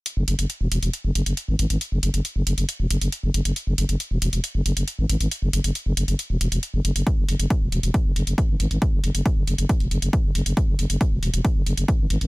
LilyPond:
<<
  \new Staff \with { instrumentName = "FM bass" } { \clef bass \time 4/4 \key e \mixolydian \tempo 4 = 137 r16 fis,,16 fis,,16 fis,,16 r16 e,,16 e,,16 e,,16 r16 fis,,16 fis,,16 fis,,16 r16 gis,,16 gis,,16 gis,,16 | r16 fis,,16 fis,,16 fis,,16 r16 fis,,16 fis,,16 fis,,16 r16 e,,16 fis,,16 fis,,16 r16 fis,,16 fis,,16 fis,,16 | r16 fis,,16 fis,,16 fis,,16 r16 e,,16 e,,16 e,,16 r16 fis,,16 fis,,16 fis,,16 r16 gis,,16 gis,,16 gis,,16 | r16 fis,,16 fis,,16 fis,,16 r16 fis,,16 fis,,16 fis,,16 r16 e,,16 e,,16 e,,16 r16 fis,,16 fis,,16 fis,,16 |
r16 fis,,16 fis,,16 fis,,16 r16 e,,16 e,,16 e,,16 r16 fis,,16 fis,,16 fis,,16 r16 gis,,16 gis,,16 gis,,16 | r16 fis,,16 fis,,16 fis,,16 r16 fis,,16 fis,,16 fis,,16 r16 e,,16 fis,,16 fis,,16 r16 fis,,16 fis,,16 fis,,16 | r16 fis,,16 fis,,16 fis,,16 r16 e,,16 e,,16 e,,16 r16 fis,,16 fis,,16 fis,,16 r16 gis,,16 gis,,16 gis,,16 | }
  \new DrumStaff \with { instrumentName = "Drums" } \drummode { \time 4/4 hh8 hh16 hh16 hh8 hh16 hh16 hh8 hh16 hh16 hh8 hh16 hh16 | hh8 hh16 hh16 hh8 hh16 hh16 hh8 hh16 hh16 hh8 hh16 hh16 | hh8 hh16 hh16 hh8 hh16 hh16 hh8 hh16 hh16 hh8 hh16 hh16 | hh8 hh16 hh16 hh8 hh16 hh16 hh8 hh16 hh16 hh8 hh16 hh16 |
<hh bd>8 hho16 hh16 <hh bd>8 hho16 hh16 <hh bd>8 hho16 hh16 <hh bd>8 hho16 hho16 | <hh bd>8 hho16 hh16 <hh bd>8 hho16 hh16 <hh bd>16 hho16 hho16 hh16 <hh bd>8 hho16 hh16 | <hh bd>8 hho16 hh16 <hh bd>8 hho16 hh16 <hh bd>8 hho16 hh16 <hh bd>8 hho16 hho16 | }
>>